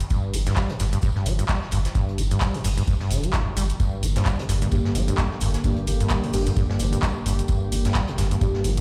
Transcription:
0.00 closed hi-hat
0.10 G2, kick, closed hi-hat, tambourine, cabasa
0.34 G1 G3, open hi-hat, tambourine, cabasa
0.46 G2, snare, closed hi-hat, cabasa
0.56 G3, kick, snare, clap, closed hi-hat, tambourine, cabasa
0.69 A#2, closed hi-hat
0.80 G1 G2, snare, open hi-hat, tambourine, cabasa
0.93 G2, closed hi-hat, cabasa
1.02 G2, kick, closed hi-hat, tambourine, cabasa
1.16 G2, snare
1.26 G1 G3, open hi-hat, tambourine, cabasa
1.39 G2, closed hi-hat, cabasa
1.49 G3, kick, snare, clap, closed hi-hat, tambourine, cabasa
1.62 snare
1.71 G1 G2, open hi-hat, tambourine, cabasa
1.85 snare, closed hi-hat, cabasa
1.95 G2, kick, closed hi-hat, tambourine, cabasa
2.08 closed hi-hat
2.18 G1 G3, open hi-hat, tambourine, cabasa
2.31 G2, closed hi-hat, cabasa
2.41 G3, kick, snare, clap, closed hi-hat, tambourine, cabasa
2.54 A#2, open hi-hat
2.64 G1 G2, open hi-hat, cabasa
2.77 G2, closed hi-hat, cabasa
2.87 G2, kick, closed hi-hat, tambourine, cabasa
3.00 G2, snare
3.10 F1 D3, open hi-hat, tambourine, cabasa
3.23 G3, closed hi-hat, cabasa
3.33 G2, kick, snare, clap, closed hi-hat, tambourine, cabasa
3.47 G1
3.57 G1 G3, open hi-hat, tambourine, cabasa
3.70 closed hi-hat, cabasa
3.80 G2 D3 A#3 G4, kick, closed hi-hat, tambourine, cabasa
4.03 G1 G3, open hi-hat, tambourine, cabasa
4.16 G2, snare, closed hi-hat, cabasa
4.25 G3, kick, snare, clap, closed hi-hat, tambourine, cabasa
4.39 A#2, closed hi-hat
4.49 G1 G2, snare, open hi-hat, tambourine, cabasa
4.61 G2, closed hi-hat, cabasa
4.71 G2 A#3 D4 G4, kick, closed hi-hat, tambourine, cabasa
4.85 G2, snare
4.95 G1 G3, open hi-hat, tambourine, cabasa
5.08 G2 A#3 D4 G4, closed hi-hat, cabasa
5.18 G3, kick, snare, clap, closed hi-hat, tambourine, cabasa
5.32 snare
5.41 G1 G2, open hi-hat, tambourine, cabasa
5.54 snare, closed hi-hat, cabasa
5.64 G2 A#3 D4 G4, kick, closed hi-hat, tambourine, cabasa
5.76 closed hi-hat
5.87 G1 G3, open hi-hat, tambourine, cabasa
6.00 G2, closed hi-hat, cabasa
6.09 G3, kick, snare, clap, closed hi-hat, tambourine, cabasa
6.23 A#2, open hi-hat
6.33 G1 G2 A#3 D4 G4, open hi-hat, cabasa
6.46 G2, closed hi-hat, cabasa
6.56 G2, kick, closed hi-hat, tambourine, cabasa
6.70 G2, snare
6.79 G1 G3, open hi-hat, tambourine, cabasa
6.93 G2, closed hi-hat, cabasa
7.02 G3, kick, snare, clap, closed hi-hat, tambourine, cabasa
7.26 G1 G2, open hi-hat, tambourine, cabasa
7.39 closed hi-hat, cabasa
7.48 G2, kick, closed hi-hat, tambourine, cabasa
7.72 G1 G3, open hi-hat, tambourine, cabasa
7.85 G2, snare, closed hi-hat, cabasa
7.95 G3, kick, snare, clap, closed hi-hat, tambourine, cabasa
8.08 A#2, closed hi-hat
8.18 G1 G2, snare, open hi-hat, tambourine, cabasa
8.31 G2, closed hi-hat, cabasa
8.41 G2 A#3 D4 G4, kick, closed hi-hat, tambourine, cabasa
8.54 G2, snare
8.64 G1 G3, open hi-hat, tambourine, cabasa
8.77 G2, closed hi-hat, cabasa

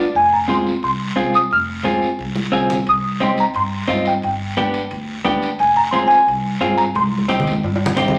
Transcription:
0.00 D5
0.15 F1 G#5, high conga, long guiro
0.33 A#5
0.48 C4 F4 G#4 C6, high conga, short guiro
0.66 short guiro
0.83 C2 C6, high conga, long guiro
1.16 C2 C4 F4 G#4, high conga, short guiro
1.34 D#6, short guiro
1.51 F1 F6, high conga, long guiro
1.84 C4 F4 G#4, high conga, short guiro
2.02 short guiro
2.19 C2, high conga, long guiro
2.35 high conga
2.52 C2 C4 F4 G#4, short guiro
2.70 low conga, short guiro
2.87 C2 D#6, high conga, high timbale, long guiro
3.20 C4 D#4 G4 C6, high conga, high timbale, short guiro
3.37 A#5, high timbale, short guiro
3.54 G2 C6, high conga, high timbale, long guiro
3.88 G2 C4 D#4 F4, high conga, high timbale, low timbale, short guiro
4.05 G5, high timbale, short guiro
4.22 G1 G5, high conga, high timbale, long guiro
4.57 B3 D4 G4, high conga, high timbale, short guiro
4.74 high timbale, short guiro
4.91 D2, high conga, high timbale, long guiro
5.25 D2 B3 D4 G4, high conga, high timbale, low timbale, short guiro
5.42 high timbale, short guiro
5.59 F1 G#5, high conga, high timbale, long guiro
5.77 A#5
5.91 C4 F4 G#4 C6, high conga, high timbale, short guiro
6.07 G#5, high timbale, short guiro
6.27 C2, high conga, high timbale, long guiro
6.61 G2 C4 F4 G#4, high conga, high timbale, short guiro
6.78 A#5, high timbale, short guiro
6.95 C2 C6, high conga, high timbale, long guiro
7.07 high conga
7.18 high conga
7.28 C4 D#4 G4, high conga, high timbale, short guiro
7.40 low conga
7.46 high timbale, short guiro
7.52 high conga
7.63 G2, high timbale, long guiro
7.76 high timbale
7.86 low conga
7.96 G2 C4 D#4 G4, low conga, low timbale, short guiro
8.08 low conga, low timbale
8.14 short guiro

